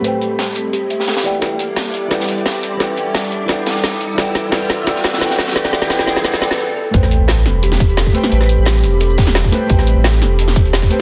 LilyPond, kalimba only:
\new Staff \with { instrumentName = "Kalimba" } { \time 4/4 \key a \dorian \tempo 4 = 174 a'8 r8 a''16 r8. g'8 e''8 a'8 r8 | a'8 r8 a''16 r8. a'8 r8 a''16 r8. | a'8 r8 a''16 r8. a'8 r8 a''16 r8. | a'8 r8 a'8 r8 a'8 r8 a'8 r8 |
a'8 a'8 a'8 a'8 a'8 a'8 a'8 a'8 | a'8 r8 a''16 r8. g'8 r8 a'8 r8 | a''16 r8. g'8 r8 a'8 r8 a''16 r8. | g'8 r8 a'8 r8 a''16 r8. g'8 r8 | }